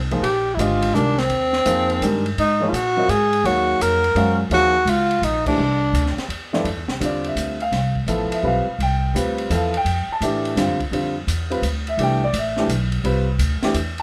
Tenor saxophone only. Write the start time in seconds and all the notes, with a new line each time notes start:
Already playing: C4
0.23 G4
0.54 E4
0.59 F4
0.95 D4
1.19 C4
2.39 D#4
2.69 F4
2.75 F#4
3.10 G#4
3.46 F#4
3.82 A#4
4.54 F#4
4.90 F4
5.24 D#4
5.48 D4